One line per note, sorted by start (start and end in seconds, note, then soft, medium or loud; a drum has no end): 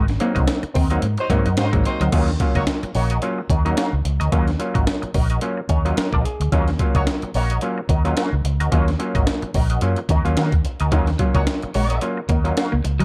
0.00 0.16 G#1 loud
0.08 muted clean electric guitar stroke soft
0.08 snare soft
0.08 closed hi-hat soft
0.20 0.64 F#3 loud
0.20 0.64 A#3 medium
0.20 0.31 A#3 medium
0.20 0.64 C4 medium
0.20 0.64 D#4 loud
0.20 muted clean electric guitar stroke soft
0.20 closed hi-hat medium
0.35 0.46 C2 medium
0.35 0.46 C4 medium
0.35 0.46 F#4 medium
0.35 0.46 A#4 medium
0.35 0.45 D#5 medium
0.35 kick medium
0.35 closed hi-hat soft
0.48 muted clean electric guitar stroke soft
0.48 snare loud
0.48 closed hi-hat medium
0.63 muted clean electric guitar stroke soft
0.63 muted fingered electric bass stroke soft
0.63 closed hi-hat soft
0.74 0.98 D#2 medium
0.74 0.88 C4 medium
0.74 0.86 C4 medium
0.74 0.88 F#4 medium
0.74 0.88 A#4 medium
0.74 0.88 D#5 medium
0.74 kick medium
0.74 open hi-hat medium
0.90 1.06 F#3 medium
0.90 1.06 A#3 medium
0.90 1.07 C4 medium
0.90 1.01 C4 medium
0.90 1.07 D#4 medium
0.90 1.01 F#4 medium
0.90 1.01 A#4 medium
0.90 1.00 D#5 medium
0.90 closed hi-hat medium
1.02 1.15 G#2 loud
1.02 muted clean electric guitar stroke soft
1.02 closed hi-hat medium
1.18 1.27 F#3 loud
1.18 1.24 C4 soft
1.18 1.24 D#4 soft
1.18 1.26 D#4 loud
1.18 1.26 C5 loud
1.18 muted clean electric guitar stroke soft
1.18 closed hi-hat soft
1.30 1.43 G#2 loud
1.30 1.48 F#3 loud
1.30 1.48 A#3 medium
1.30 1.41 A#3 medium
1.30 1.48 C4 medium
1.30 1.43 C4 soft
1.30 1.48 D#4 loud
1.30 1.43 F#4 medium
1.30 1.43 A#4 soft
1.30 1.44 D#5 medium
1.30 kick medium
1.30 closed hi-hat medium
1.46 1.56 F#2 medium
1.46 1.56 C4 soft
1.46 1.56 F#4 medium
1.46 1.56 A#4 medium
1.46 1.56 D#5 medium
1.46 closed hi-hat soft
1.57 1.70 G#2 medium
1.57 1.68 F#3 medium
1.57 1.65 C4 soft
1.57 1.74 C4 medium
1.57 1.68 D#4 medium
1.57 1.65 F#4 soft
1.57 1.74 F#4 medium
1.57 1.74 A#4 medium
1.57 1.68 C5 loud
1.57 1.74 F5 loud
1.57 snare loud
1.57 closed hi-hat loud
1.72 1.83 G#1 loud
1.72 2.11 F#3 medium
1.72 1.81 G#3 medium
1.72 2.11 A#3 medium
1.72 2.13 C4 medium
1.72 2.13 D#4 medium
1.72 kick loud
1.72 closed hi-hat soft
1.85 2.03 F#3 loud
1.85 2.03 D#4 loud
1.85 2.03 C5 loud
1.85 muted clean electric guitar stroke soft
1.85 closed hi-hat medium
2.00 2.11 D2 medium
2.00 2.09 F#3 medium
2.00 2.12 C4 soft
2.00 2.12 F#4 medium
2.00 2.11 A#4 medium
2.00 2.11 D#5 medium
2.00 closed hi-hat soft
2.12 2.36 D#2 medium
2.12 2.31 F#3 loud
2.12 2.31 A#3 loud
2.12 2.31 C#4 medium
2.12 2.29 C#4 medium
2.12 2.31 F4 loud
2.12 2.29 F#4 medium
2.12 2.28 A#4 medium
2.12 2.28 D#5 loud
2.12 kick loud
2.12 closed hi-hat medium
2.12 crash medium
2.28 snare soft
2.28 closed hi-hat soft
2.40 2.91 F#3 medium
2.40 2.91 A#3 medium
2.40 2.91 C#4 medium
2.40 2.92 F4 medium
2.40 muted clean electric guitar stroke soft
2.40 kick loud
2.40 closed hi-hat medium
2.55 2.65 C#2 medium
2.55 2.63 A#3 loud
2.55 2.66 C#4 medium
2.55 2.63 F#4 medium
2.55 2.66 F#4 medium
2.55 2.66 A#4 medium
2.55 2.63 C#5 medium
2.55 2.66 D#5 medium
2.55 kick medium
2.55 closed hi-hat soft
2.67 snare loud
2.67 closed hi-hat medium
2.83 muted fingered electric bass stroke soft
2.83 muted clean electric guitar stroke soft
2.83 closed hi-hat soft
2.95 3.18 A#1 medium
2.95 3.13 A#3 medium
2.95 3.08 C#4 medium
2.95 3.13 F#4 medium
2.95 3.08 F#4 medium
2.95 3.08 A#4 medium
2.95 3.13 C#5 medium
2.95 3.09 D#5 medium
2.95 open hi-hat medium
3.10 3.21 C#4 medium
3.10 3.21 F#4 medium
3.10 3.21 A#4 medium
3.10 3.21 D#5 medium
3.10 closed hi-hat medium
3.22 3.41 F#3 medium
3.22 3.41 A#3 medium
3.22 3.41 C#4 medium
3.22 3.41 F4 loud
3.22 muted clean electric guitar stroke soft
3.22 closed hi-hat medium
3.38 muted clean electric guitar stroke soft
3.50 3.72 D#2 medium
3.50 3.57 C#4 soft
3.50 3.63 C#4 medium
3.50 3.57 F4 soft
3.50 3.63 F#4 medium
3.50 3.63 A#4 medium
3.50 3.64 D#5 medium
3.50 kick medium
3.50 closed hi-hat medium
3.65 3.90 F#3 medium
3.65 3.90 A#3 medium
3.65 3.90 C#4 medium
3.65 3.76 C#4 medium
3.65 3.91 D#4 medium
3.65 3.76 F#4 medium
3.65 3.76 A#4 medium
3.65 3.75 D#5 medium
3.65 closed hi-hat soft
3.77 3.93 C#4 medium
3.77 3.94 F#4 medium
3.77 3.94 A#4 medium
3.77 3.94 F5 medium
3.77 snare loud
3.77 closed hi-hat loud
3.93 4.03 C#2 medium
4.05 4.18 C#2 medium
4.05 4.12 C#4 soft
4.05 4.12 F4 soft
4.05 muted clean electric guitar stroke soft
4.05 closed hi-hat medium
4.20 4.30 D2 loud
4.20 4.31 C#4 medium
4.20 4.31 F#4 medium
4.20 4.30 A#4 medium
4.20 4.30 D#5 medium
4.20 closed hi-hat medium
4.32 4.55 D#2 loud
4.32 4.50 F#3 loud
4.32 4.50 A#3 medium
4.32 4.48 C#4 medium
4.32 4.50 C#4 loud
4.32 4.51 F4 loud
4.32 4.47 F#4 medium
4.32 4.47 A#4 medium
4.32 4.46 D#5 medium
4.32 kick loud
4.32 closed hi-hat medium
4.47 muted clean electric guitar stroke soft
4.47 snare soft
4.47 closed hi-hat soft
4.59 5.11 F#3 medium
4.59 5.11 A#3 medium
4.59 5.11 C#4 medium
4.59 5.11 F4 medium
4.59 muted clean electric guitar stroke soft
4.59 closed hi-hat medium
4.74 4.85 G#1 medium
4.74 4.86 C#4 medium
4.74 4.85 F#4 medium
4.74 4.85 A#4 medium
4.74 4.85 D#5 medium
4.74 kick medium
4.74 closed hi-hat soft
4.87 snare loud
4.87 closed hi-hat medium
5.02 muted clean electric guitar stroke medium
5.02 muted fingered electric bass stroke soft
5.02 closed hi-hat soft
5.14 5.37 A#1 medium
5.14 5.27 C#4 medium
5.14 5.28 F#4 medium
5.14 5.28 A#4 medium
5.14 5.28 D#5 medium
5.14 kick loud
5.14 open hi-hat medium
5.30 5.41 C#4 soft
5.30 5.41 F#4 medium
5.30 5.40 A#4 medium
5.30 5.40 D#5 medium
5.30 closed hi-hat medium
5.41 5.60 F#3 medium
5.41 5.60 A#3 medium
5.41 5.60 C#4 medium
5.41 5.60 F4 medium
5.41 muted clean electric guitar stroke soft
5.41 closed hi-hat medium
5.57 muted clean electric guitar stroke soft
5.69 5.92 D#2 loud
5.69 5.77 C#4 soft
5.69 5.82 C#4 medium
5.69 5.77 F4 soft
5.69 5.83 F#4 medium
5.69 5.83 A#4 medium
5.69 5.95 C#5 medium
5.69 5.83 D#5 medium
5.69 kick medium
5.69 closed hi-hat medium
5.85 6.10 F#3 medium
5.85 6.10 A#3 medium
5.85 6.10 C#4 medium
5.85 5.96 C#4 medium
5.85 6.10 F4 medium
5.85 5.96 F#4 medium
5.85 5.96 A#4 medium
5.85 5.95 D#5 medium
5.85 closed hi-hat soft
5.97 6.23 A#4 medium
5.97 muted fingered electric bass stroke soft
5.97 snare loud
5.97 closed hi-hat loud
6.13 6.23 A#1 medium
6.13 6.25 C#4 medium
6.13 6.25 F#4 medium
6.13 6.26 A#4 medium
6.13 6.26 D#5 medium
6.13 kick medium
6.25 6.32 C#4 soft
6.25 6.32 F4 soft
6.25 6.50 G#4 medium
6.25 closed hi-hat medium
6.40 6.50 D2 medium
6.40 muted clean electric guitar stroke soft
6.40 closed hi-hat medium
6.52 6.75 D#2 loud
6.52 6.70 F#3 loud
6.52 6.70 A#3 loud
6.52 6.71 C#4 loud
6.52 6.69 C#4 medium
6.52 6.71 F4 loud
6.52 6.69 F#4 medium
6.52 6.68 A#4 medium
6.52 6.67 D#5 medium
6.52 kick loud
6.52 closed hi-hat medium
6.68 muted clean electric guitar stroke medium
6.68 snare soft
6.68 closed hi-hat soft
6.79 7.31 F#3 medium
6.79 7.31 A#3 medium
6.79 7.31 C#4 medium
6.79 7.31 F4 medium
6.79 muted clean electric guitar stroke soft
6.79 kick loud
6.79 closed hi-hat medium
6.95 7.05 C#2 medium
6.95 7.02 A#3 loud
6.95 7.06 C#4 soft
6.95 7.02 F#4 loud
6.95 7.06 F#4 medium
6.95 7.06 A#4 medium
6.95 7.03 C#5 loud
6.95 7.05 D#5 medium
6.95 kick loud
6.95 closed hi-hat medium
7.07 muted clean electric guitar stroke soft
7.07 snare loud
7.07 closed hi-hat medium
7.22 muted fingered electric bass stroke soft
7.22 muted clean electric guitar stroke soft
7.22 closed hi-hat soft
7.34 7.57 A#1 medium
7.34 7.52 A#3 medium
7.34 7.48 C#4 medium
7.34 7.52 F#4 medium
7.34 7.48 F#4 medium
7.34 7.48 A#4 medium
7.34 7.52 C#5 loud
7.34 7.48 D#5 medium
7.34 open hi-hat medium
7.50 7.61 C#4 medium
7.50 7.61 F#4 medium
7.50 7.61 A#4 medium
7.50 7.60 D#5 medium
7.50 closed hi-hat medium
7.61 7.80 F#3 medium
7.61 7.80 A#3 medium
7.61 7.80 C#4 medium
7.61 7.80 F4 medium
7.61 closed hi-hat medium
7.78 muted clean electric guitar stroke soft
7.89 8.12 D#2 loud
7.89 8.02 C#4 medium
7.89 7.97 C#4 soft
7.89 7.97 F4 soft
7.89 8.02 F#4 medium
7.89 8.03 A#4 medium
7.89 8.03 D#5 medium
7.89 kick medium
7.89 closed hi-hat medium
8.05 8.30 F#3 medium
8.05 8.30 A#3 medium
8.05 8.30 C#4 medium
8.05 8.16 C#4 medium
8.05 8.30 F4 medium
8.05 8.16 F#4 medium
8.05 8.15 A#4 medium
8.05 8.15 D#5 medium
8.05 closed hi-hat soft
8.17 8.33 C#4 medium
8.17 8.33 F#4 medium
8.17 8.34 A#4 medium
8.17 8.34 F5 medium
8.17 snare loud
8.17 closed hi-hat loud
8.33 8.43 C#2 loud
8.44 8.57 C#2 loud
8.44 8.52 C#4 soft
8.44 8.52 F4 soft
8.44 muted clean electric guitar stroke soft
8.44 closed hi-hat medium
8.60 8.70 D2 medium
8.60 8.71 C#4 medium
8.60 8.70 F#4 medium
8.60 8.70 A#4 medium
8.60 8.70 D#5 medium
8.60 closed hi-hat medium
8.72 8.95 D#2 loud
8.72 8.90 F#3 loud
8.72 8.90 A#3 loud
8.72 8.90 C#4 medium
8.72 8.88 C#4 medium
8.72 8.90 F4 loud
8.72 8.88 F#4 medium
8.72 8.87 A#4 medium
8.72 8.87 D#5 loud
8.72 kick loud
8.72 closed hi-hat medium
8.88 snare soft
8.88 closed hi-hat soft
8.99 9.50 F#3 medium
8.99 9.51 A#3 medium
8.99 9.51 C#4 medium
8.99 9.51 F4 medium
8.99 muted clean electric guitar stroke soft
8.99 closed hi-hat medium
9.15 9.25 G#1 medium
9.15 9.26 C#4 medium
9.15 9.26 F#4 medium
9.15 9.25 A#4 medium
9.15 9.25 D#5 medium
9.15 kick loud
9.15 closed hi-hat medium
9.27 muted clean electric guitar stroke soft
9.27 snare loud
9.27 closed hi-hat medium
9.42 muted clean electric guitar stroke soft
9.42 muted fingered electric bass stroke soft
9.42 closed hi-hat soft
9.54 9.77 A#1 medium
9.54 9.67 C#4 medium
9.54 9.68 F#4 medium
9.54 9.68 A#4 medium
9.54 9.68 D#5 medium
9.54 kick medium
9.54 open hi-hat medium
9.70 9.81 C#4 soft
9.70 9.80 F#4 medium
9.70 9.80 A#4 medium
9.70 9.80 D#5 medium
9.70 closed hi-hat medium
9.81 9.95 F#2 medium
9.81 10.00 F#3 medium
9.81 10.00 A#3 medium
9.81 10.00 C#4 medium
9.81 10.00 F4 medium
9.81 closed hi-hat medium
9.96 muted clean electric guitar stroke soft
9.96 closed hi-hat soft
10.09 10.22 D#2 medium
10.09 10.17 C#4 soft
10.09 10.26 C#4 medium
10.09 10.17 F4 soft
10.09 10.25 F#4 medium
10.09 10.25 A#4 medium
10.09 10.24 D#5 medium
10.09 kick medium
10.09 closed hi-hat medium
10.25 10.35 D#2 medium
10.25 10.50 F#3 medium
10.25 10.50 A#3 medium
10.25 10.50 C#4 medium
10.25 10.50 F4 medium
10.25 closed hi-hat soft
10.37 10.50 D#3 medium
10.37 10.53 C#4 medium
10.37 10.53 F#4 medium
10.37 10.54 A#4 medium
10.37 10.54 F5 medium
10.37 snare loud
10.37 closed hi-hat loud
10.52 10.62 D#2 medium
10.52 kick medium
10.52 closed hi-hat soft
10.64 10.72 C#4 soft
10.64 10.72 F4 soft
10.64 muted clean electric guitar stroke soft
10.64 closed hi-hat medium
10.80 10.90 D2 medium
10.80 10.91 C#4 medium
10.80 10.91 F#4 medium
10.80 10.91 A#4 medium
10.80 10.90 D#5 medium
10.80 closed hi-hat medium
10.92 11.02 D#3 medium
10.92 11.10 F#3 loud
10.92 11.10 A#3 loud
10.92 11.10 C#4 loud
10.92 11.08 C#4 medium
10.92 11.10 F4 loud
10.92 11.08 F#4 medium
10.92 11.08 A#4 loud
10.92 11.07 D#5 loud
10.92 kick loud
10.92 closed hi-hat medium
11.07 muted clean electric guitar stroke soft
11.07 snare soft
11.07 closed hi-hat soft
11.19 11.70 F#3 medium
11.19 11.29 F#3 medium
11.19 11.71 A#3 medium
11.19 11.71 C#4 medium
11.19 11.71 F4 medium
11.19 muted clean electric guitar stroke soft
11.19 kick medium
11.19 closed hi-hat medium
11.34 11.45 C#2 medium
11.34 11.42 A#3 medium
11.34 11.46 C#4 medium
11.34 11.42 F#4 medium
11.34 11.46 F#4 medium
11.34 11.45 A#4 medium
11.34 11.42 C#5 loud
11.34 11.45 D#5 medium
11.34 kick medium
11.34 closed hi-hat soft
11.47 snare loud
11.47 closed hi-hat medium
11.62 muted clean electric guitar stroke medium
11.62 muted fingered electric bass stroke medium
11.62 closed hi-hat soft
11.74 11.97 A#1 medium
11.74 11.84 G#3 medium
11.74 11.98 A#3 medium
11.74 11.87 C#4 medium
11.74 11.98 F#4 medium
11.74 11.88 F#4 medium
11.74 11.88 A#4 medium
11.74 11.98 C#5 loud
11.74 11.88 D#5 medium
11.74 open hi-hat medium
11.90 12.01 C#4 medium
11.90 12.01 F#4 soft
11.90 12.00 A#4 medium
11.90 12.00 D#5 medium
11.90 closed hi-hat medium
12.01 12.20 F#3 medium
12.01 12.20 A#3 medium
12.01 12.20 C#4 medium
12.01 12.20 F4 medium
12.01 muted clean electric guitar stroke soft
12.01 closed hi-hat medium
12.17 muted clean electric guitar stroke medium
12.29 12.52 D#2 medium
12.29 12.39 A#3 medium
12.29 12.37 C#4 soft
12.29 12.42 C#4 medium
12.29 12.37 F4 soft
12.29 12.43 F#4 medium
12.29 12.43 A#4 medium
12.29 12.43 D#5 medium
12.29 kick loud
12.29 closed hi-hat medium
12.44 12.69 F#3 medium
12.44 12.70 A#3 medium
12.44 12.70 C#4 medium
12.44 12.56 C#4 medium
12.44 12.70 F4 medium
12.44 12.56 F#4 medium
12.44 12.55 A#4 medium
12.44 12.55 D#5 medium
12.44 closed hi-hat soft
12.57 12.73 C#4 medium
12.57 12.73 F#4 medium
12.57 12.74 A#4 medium
12.57 12.74 F5 loud
12.57 snare loud
12.57 closed hi-hat loud
12.72 12.83 C#2 medium
12.72 12.80 A#3 medium
12.84 12.97 C#2 medium
12.84 12.92 C#4 soft
12.84 12.92 F4 soft
12.84 muted clean electric guitar stroke soft
12.84 closed hi-hat medium
12.99 13.05 D2 medium
12.99 13.05 F#3 medium
12.99 13.05 C#4 medium
12.99 13.05 F#4 medium
12.99 13.05 A#4 medium
12.99 13.05 D#5 medium
12.99 closed hi-hat medium